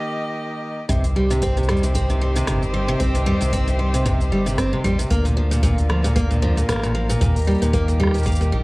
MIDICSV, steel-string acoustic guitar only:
0, 0, Header, 1, 2, 480
1, 0, Start_track
1, 0, Key_signature, -3, "minor"
1, 0, Tempo, 526316
1, 818, Time_signature, 4, 2, 24, 8
1, 7874, End_track
2, 0, Start_track
2, 0, Title_t, "Steel-string acoustic guitar"
2, 0, Program_c, 0, 25
2, 812, Note_on_c, 0, 48, 97
2, 943, Note_off_c, 0, 48, 0
2, 1058, Note_on_c, 0, 55, 79
2, 1186, Note_off_c, 0, 55, 0
2, 1192, Note_on_c, 0, 48, 99
2, 1287, Note_off_c, 0, 48, 0
2, 1299, Note_on_c, 0, 60, 110
2, 1419, Note_off_c, 0, 60, 0
2, 1432, Note_on_c, 0, 48, 71
2, 1527, Note_off_c, 0, 48, 0
2, 1538, Note_on_c, 0, 55, 87
2, 1666, Note_off_c, 0, 55, 0
2, 1670, Note_on_c, 0, 48, 77
2, 1766, Note_off_c, 0, 48, 0
2, 1777, Note_on_c, 0, 60, 99
2, 1899, Note_off_c, 0, 60, 0
2, 1912, Note_on_c, 0, 48, 77
2, 2007, Note_off_c, 0, 48, 0
2, 2019, Note_on_c, 0, 55, 77
2, 2139, Note_off_c, 0, 55, 0
2, 2152, Note_on_c, 0, 48, 107
2, 2247, Note_off_c, 0, 48, 0
2, 2258, Note_on_c, 0, 48, 99
2, 2385, Note_off_c, 0, 48, 0
2, 2494, Note_on_c, 0, 55, 78
2, 2624, Note_off_c, 0, 55, 0
2, 2629, Note_on_c, 0, 48, 99
2, 2726, Note_off_c, 0, 48, 0
2, 2733, Note_on_c, 0, 60, 93
2, 2857, Note_off_c, 0, 60, 0
2, 2871, Note_on_c, 0, 48, 72
2, 2967, Note_off_c, 0, 48, 0
2, 2974, Note_on_c, 0, 55, 102
2, 3104, Note_off_c, 0, 55, 0
2, 3106, Note_on_c, 0, 48, 76
2, 3204, Note_off_c, 0, 48, 0
2, 3217, Note_on_c, 0, 60, 114
2, 3338, Note_off_c, 0, 60, 0
2, 3351, Note_on_c, 0, 48, 74
2, 3447, Note_off_c, 0, 48, 0
2, 3455, Note_on_c, 0, 55, 67
2, 3578, Note_off_c, 0, 55, 0
2, 3591, Note_on_c, 0, 48, 96
2, 3687, Note_off_c, 0, 48, 0
2, 3698, Note_on_c, 0, 48, 102
2, 3826, Note_off_c, 0, 48, 0
2, 3939, Note_on_c, 0, 55, 79
2, 4066, Note_off_c, 0, 55, 0
2, 4069, Note_on_c, 0, 48, 104
2, 4165, Note_off_c, 0, 48, 0
2, 4177, Note_on_c, 0, 60, 105
2, 4298, Note_off_c, 0, 60, 0
2, 4312, Note_on_c, 0, 48, 77
2, 4407, Note_off_c, 0, 48, 0
2, 4416, Note_on_c, 0, 55, 109
2, 4545, Note_off_c, 0, 55, 0
2, 4550, Note_on_c, 0, 48, 80
2, 4646, Note_off_c, 0, 48, 0
2, 4655, Note_on_c, 0, 58, 94
2, 4777, Note_off_c, 0, 58, 0
2, 4788, Note_on_c, 0, 46, 71
2, 4885, Note_off_c, 0, 46, 0
2, 4895, Note_on_c, 0, 53, 79
2, 5018, Note_off_c, 0, 53, 0
2, 5028, Note_on_c, 0, 46, 100
2, 5123, Note_off_c, 0, 46, 0
2, 5134, Note_on_c, 0, 46, 110
2, 5264, Note_off_c, 0, 46, 0
2, 5377, Note_on_c, 0, 53, 73
2, 5505, Note_off_c, 0, 53, 0
2, 5512, Note_on_c, 0, 46, 98
2, 5607, Note_off_c, 0, 46, 0
2, 5616, Note_on_c, 0, 58, 99
2, 5738, Note_off_c, 0, 58, 0
2, 5751, Note_on_c, 0, 46, 79
2, 5847, Note_off_c, 0, 46, 0
2, 5857, Note_on_c, 0, 53, 100
2, 5985, Note_off_c, 0, 53, 0
2, 5994, Note_on_c, 0, 46, 76
2, 6088, Note_off_c, 0, 46, 0
2, 6099, Note_on_c, 0, 58, 104
2, 6219, Note_off_c, 0, 58, 0
2, 6233, Note_on_c, 0, 46, 75
2, 6328, Note_off_c, 0, 46, 0
2, 6335, Note_on_c, 0, 53, 80
2, 6457, Note_off_c, 0, 53, 0
2, 6471, Note_on_c, 0, 46, 100
2, 6566, Note_off_c, 0, 46, 0
2, 6576, Note_on_c, 0, 46, 94
2, 6705, Note_off_c, 0, 46, 0
2, 6815, Note_on_c, 0, 55, 76
2, 6944, Note_off_c, 0, 55, 0
2, 6948, Note_on_c, 0, 46, 97
2, 7045, Note_off_c, 0, 46, 0
2, 7052, Note_on_c, 0, 58, 118
2, 7176, Note_off_c, 0, 58, 0
2, 7187, Note_on_c, 0, 46, 70
2, 7285, Note_off_c, 0, 46, 0
2, 7293, Note_on_c, 0, 55, 97
2, 7423, Note_off_c, 0, 55, 0
2, 7426, Note_on_c, 0, 46, 77
2, 7524, Note_off_c, 0, 46, 0
2, 7531, Note_on_c, 0, 58, 98
2, 7655, Note_off_c, 0, 58, 0
2, 7668, Note_on_c, 0, 46, 83
2, 7765, Note_off_c, 0, 46, 0
2, 7773, Note_on_c, 0, 55, 78
2, 7874, Note_off_c, 0, 55, 0
2, 7874, End_track
0, 0, End_of_file